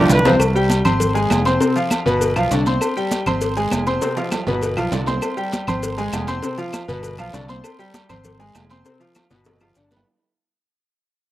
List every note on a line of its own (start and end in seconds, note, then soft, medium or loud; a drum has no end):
0.00 0.20 D3 medium
0.00 0.11 F3 medium
0.00 0.20 D4 medium
0.00 0.20 F4 medium
0.09 0.37 C2 loud
0.09 0.33 B3 medium
0.09 0.32 B4 medium
0.09 cowbell medium
0.09 low conga medium
0.09 low timbale loud
0.09 short guiro medium
0.09 maracas medium
0.19 low conga medium
0.25 0.38 C3 loud
0.25 0.34 F3 medium
0.25 0.38 C4 loud
0.25 0.38 C5 loud
0.25 low bongo loud
0.25 low timbale medium
0.25 short guiro medium
0.25 maracas soft
0.29 low conga medium
0.39 0.82 C2 loud
0.39 cowbell loud
0.39 high conga soft
0.39 low agogo loud
0.39 long guiro medium
0.39 claves medium
0.39 maracas medium
0.55 0.80 G3 medium
0.55 0.80 G4 medium
0.55 0.80 G5 medium
0.55 high conga soft
0.55 maracas soft
0.70 cowbell medium
0.70 high conga loud
0.70 low timbale medium
0.70 low agogo medium
0.70 short guiro medium
0.70 maracas medium
0.85 1.27 G#1 loud
0.85 1.10 C4 medium
0.85 1.10 C5 medium
0.85 1.10 C6 medium
0.85 cowbell medium
0.85 high conga soft
0.85 low conga medium
0.85 low agogo loud
0.85 short guiro medium
0.85 claves medium
0.85 maracas soft
1.00 cowbell loud
1.00 high conga soft
1.00 low conga medium
1.00 long guiro medium
1.00 maracas medium
1.14 1.40 G#3 medium
1.14 1.40 G#4 medium
1.14 1.40 G#5 medium
1.14 cowbell medium
1.14 high conga soft
1.14 maracas soft
1.30 1.57 F1 loud
1.30 cowbell medium
1.30 high conga medium
1.30 low timbale medium
1.30 low agogo loud
1.30 short guiro medium
1.30 claves medium
1.30 maracas medium
1.45 1.58 C4 medium
1.45 1.58 C5 medium
1.45 1.58 C6 medium
1.45 cowbell medium
1.45 low agogo medium
1.45 short guiro medium
1.45 maracas soft
1.60 1.73 C3 medium
1.60 1.73 C4 medium
1.60 1.73 C5 medium
1.60 cowbell loud
1.60 high conga soft
1.60 long guiro medium
1.60 maracas medium
1.76 2.01 F3 medium
1.76 2.01 F4 medium
1.76 2.01 F5 medium
1.76 cowbell medium
1.76 high conga soft
1.76 low agogo medium
1.76 maracas soft
1.90 cowbell medium
1.90 high conga loud
1.90 low timbale medium
1.90 low agogo loud
1.90 short guiro medium
1.90 claves medium
1.90 maracas medium
2.05 2.34 G1 medium
2.05 2.31 B2 medium
2.05 2.31 B3 medium
2.05 2.31 B4 medium
2.05 high conga soft
2.05 short guiro medium
2.05 maracas soft
2.21 cowbell loud
2.21 high conga soft
2.21 low agogo medium
2.21 long guiro medium
2.21 maracas medium
2.36 2.50 B1 medium
2.36 2.49 F3 medium
2.36 2.49 F4 medium
2.36 2.49 F5 medium
2.36 cowbell medium
2.36 high conga soft
2.36 low agogo loud
2.36 claves medium
2.36 maracas soft
2.51 2.78 C2 loud
2.51 2.64 D3 medium
2.51 2.64 D4 medium
2.51 2.64 D5 medium
2.51 cowbell medium
2.51 high conga soft
2.51 low timbale medium
2.51 short guiro medium
2.51 maracas medium
2.66 2.91 C4 medium
2.66 2.91 C5 medium
2.66 2.91 C6 medium
2.66 high conga medium
2.66 short guiro medium
2.66 maracas soft
2.81 cowbell loud
2.81 high conga soft
2.81 low agogo loud
2.81 long guiro medium
2.81 claves medium
2.81 maracas medium
2.96 3.21 G3 medium
2.96 3.21 G4 medium
2.96 3.21 G5 medium
2.96 high conga soft
2.96 maracas soft
3.11 cowbell medium
3.11 high conga loud
3.11 low timbale medium
3.11 low agogo medium
3.11 short guiro medium
3.11 maracas medium
3.26 3.69 G#1 medium
3.26 3.52 C4 medium
3.26 3.52 C5 medium
3.26 3.52 C6 medium
3.26 cowbell medium
3.26 high conga soft
3.26 low conga medium
3.26 low agogo loud
3.26 short guiro medium
3.26 claves medium
3.26 maracas soft
3.41 cowbell loud
3.41 high conga soft
3.41 long guiro medium
3.41 maracas medium
3.57 3.82 G#3 medium
3.57 3.82 G#4 medium
3.57 3.82 G#5 medium
3.57 cowbell medium
3.57 high conga soft
3.57 maracas soft
3.71 3.98 F1 medium
3.71 cowbell medium
3.71 high conga medium
3.71 low timbale medium
3.71 low agogo loud
3.71 short guiro medium
3.71 claves medium
3.71 maracas medium
3.87 3.99 C4 medium
3.87 3.99 C5 medium
3.87 4.00 C6 medium
3.87 cowbell medium
3.87 high conga medium
3.87 low agogo medium
3.87 short guiro medium
3.87 maracas soft
4.01 4.14 C3 medium
4.01 4.14 C4 medium
4.01 4.15 C5 medium
4.01 cowbell loud
4.01 high conga soft
4.01 high timbale medium
4.01 long guiro medium
4.01 maracas medium
4.16 4.41 F3 medium
4.16 4.42 F4 medium
4.16 4.42 F5 medium
4.16 cowbell medium
4.16 high conga soft
4.16 high timbale loud
4.16 low agogo medium
4.16 maracas soft
4.31 cowbell medium
4.31 high conga loud
4.31 low timbale medium
4.31 low agogo loud
4.31 short guiro medium
4.31 claves medium
4.31 maracas medium
4.47 4.75 G1 medium
4.47 4.72 B2 medium
4.47 4.73 B3 medium
4.47 4.73 B4 medium
4.47 high conga soft
4.47 high timbale loud
4.47 short guiro medium
4.47 maracas soft
4.61 cowbell loud
4.61 high conga soft
4.61 low agogo medium
4.61 long guiro medium
4.61 maracas medium
4.77 4.91 B1 medium
4.77 4.90 F3 medium
4.77 4.90 F4 medium
4.77 4.90 F5 medium
4.77 cowbell medium
4.77 high conga soft
4.77 low timbale medium
4.77 low agogo loud
4.77 claves medium
4.77 maracas soft
4.92 5.19 C2 loud
4.92 5.05 D3 medium
4.92 5.05 D4 medium
4.92 5.05 D5 medium
4.92 cowbell medium
4.92 high conga soft
4.92 low timbale medium
4.92 short guiro medium
4.92 maracas medium
5.06 5.32 C4 medium
5.06 5.32 C5 medium
5.06 5.32 C6 medium
5.06 high conga medium
5.06 low timbale loud
5.06 short guiro medium
5.06 maracas soft
5.21 cowbell loud
5.21 high conga soft
5.21 low agogo loud
5.21 long guiro medium
5.21 claves medium
5.21 maracas medium
5.37 5.62 G3 medium
5.37 5.62 G4 medium
5.37 5.62 G5 medium
5.37 high conga soft
5.37 maracas soft
5.52 cowbell medium
5.52 high conga loud
5.52 low timbale medium
5.52 low agogo medium
5.52 short guiro medium
5.52 maracas medium
5.67 6.10 G#1 medium
5.67 5.93 C4 medium
5.67 5.93 C5 medium
5.67 5.93 C6 medium
5.67 cowbell medium
5.67 high conga soft
5.67 low conga medium
5.67 low agogo loud
5.67 short guiro medium
5.67 claves medium
5.67 maracas soft
5.82 cowbell loud
5.82 high conga soft
5.82 long guiro medium
5.82 maracas medium
5.98 6.23 G#3 medium
5.98 6.23 G#4 medium
5.98 6.23 G#5 medium
5.98 cowbell medium
5.98 high conga soft
5.98 maracas soft
6.12 6.40 F1 loud
6.12 cowbell medium
6.12 high conga medium
6.12 low timbale medium
6.12 low agogo loud
6.12 short guiro medium
6.12 claves medium
6.12 maracas medium
6.27 6.40 C4 medium
6.27 6.41 C5 medium
6.27 6.41 C6 medium
6.27 cowbell medium
6.27 high conga medium
6.27 low agogo medium
6.27 short guiro medium
6.27 maracas soft
6.42 6.56 C3 medium
6.42 6.56 C4 medium
6.42 6.56 C5 medium
6.42 cowbell loud
6.42 high conga soft
6.42 long guiro medium
6.42 maracas medium
6.58 6.83 F3 medium
6.58 6.83 F4 medium
6.58 6.84 F5 medium
6.58 cowbell medium
6.58 high conga soft
6.58 low agogo medium
6.58 maracas soft
6.73 cowbell medium
6.73 high conga medium
6.73 low timbale medium
6.73 low agogo loud
6.73 short guiro medium
6.73 claves medium
6.73 maracas medium
6.88 7.17 G1 loud
6.88 7.13 B2 medium
6.88 7.13 B3 medium
6.88 7.14 B4 loud
6.88 high conga soft
6.88 short guiro medium
6.88 maracas soft
7.03 cowbell loud
7.03 high conga soft
7.03 low agogo medium
7.03 long guiro medium
7.03 maracas medium
7.18 7.33 B1 medium
7.18 7.31 F3 medium
7.18 7.31 F4 medium
7.18 7.31 F5 medium
7.18 cowbell medium
7.18 high conga soft
7.18 low agogo loud
7.18 claves medium
7.18 maracas soft
7.33 7.61 C2 loud
7.33 7.46 D3 medium
7.33 7.46 D4 medium
7.33 7.46 D5 medium
7.33 cowbell medium
7.33 high conga soft
7.33 low timbale medium
7.33 short guiro medium
7.33 maracas medium
7.49 7.74 C4 medium
7.49 7.74 C5 medium
7.49 7.74 C6 medium
7.49 high conga medium
7.49 short guiro medium
7.49 maracas soft
7.64 cowbell loud
7.64 high conga soft
7.64 low agogo loud
7.64 long guiro medium
7.64 claves medium
7.64 maracas medium
7.79 8.04 G3 medium
7.79 8.04 G4 medium
7.79 8.04 G5 medium
7.79 high conga soft
7.79 maracas soft
7.94 cowbell medium
7.94 high conga loud
7.94 low timbale medium
7.94 low agogo medium
7.94 short guiro medium
7.94 maracas medium
8.09 8.52 G#1 loud
8.09 8.34 C4 medium
8.09 8.34 C5 medium
8.09 8.35 C6 medium
8.09 cowbell medium
8.09 high conga soft
8.09 low conga medium
8.09 low agogo loud
8.09 short guiro medium
8.09 claves medium
8.09 maracas soft
8.24 cowbell loud
8.24 high conga soft
8.24 low conga medium
8.24 long guiro medium
8.24 maracas medium
8.39 8.65 G#3 medium
8.39 8.65 G#4 medium
8.39 8.65 G#5 medium
8.39 cowbell medium
8.39 high conga soft
8.39 maracas soft
8.55 8.82 F1 loud
8.55 cowbell medium
8.55 high conga medium
8.55 low timbale medium
8.55 low agogo loud
8.55 short guiro medium
8.55 claves medium
8.55 maracas medium
8.70 8.83 C4 medium
8.70 8.83 C5 medium
8.70 8.83 C6 medium
8.70 cowbell medium
8.70 high conga medium
8.70 low agogo medium
8.70 short guiro medium
8.70 maracas soft
8.85 8.98 C3 medium
8.85 8.98 C4 medium
8.85 8.98 C5 medium
8.85 cowbell loud
8.85 high conga soft
8.85 long guiro medium
8.85 maracas medium
9.00 9.25 F3 medium
9.00 9.25 F4 medium
9.00 9.25 F5 medium
9.00 cowbell medium
9.00 high conga soft
9.00 low agogo medium
9.00 maracas soft
9.15 cowbell medium
9.15 high bongo medium
9.15 high conga medium
9.15 low timbale medium
9.15 low agogo loud
9.15 short guiro medium
9.15 claves medium
9.15 maracas medium
9.30 9.73 G1 medium
9.30 9.55 B2 medium
9.30 9.55 B3 medium
9.30 9.56 B4 medium
9.30 high bongo medium
9.30 high conga soft
9.30 short guiro medium
9.30 maracas soft
9.45 cowbell loud
9.45 low bongo loud
9.45 high conga soft
9.45 high timbale loud
9.45 low agogo medium
9.45 long guiro medium
9.45 maracas medium
9.56 high timbale medium
9.56 maracas soft
9.61 9.74 F3 medium
9.61 9.74 F4 medium
9.61 9.74 F5 medium
9.61 cowbell medium
9.61 low bongo medium
9.61 high conga soft
9.61 low agogo loud
9.61 claves medium
9.75 10.03 G1 loud
9.75 9.89 D3 medium
9.75 9.89 D4 medium
9.75 9.89 D5 medium
9.75 cowbell medium
9.75 high conga soft
9.75 short guiro medium
9.75 maracas medium
9.91 10.04 B3 medium
9.91 10.04 B4 medium
9.91 10.04 B5 medium
9.91 low bongo medium
9.91 high conga medium
9.91 short guiro medium
9.91 maracas soft
9.97 low timbale loud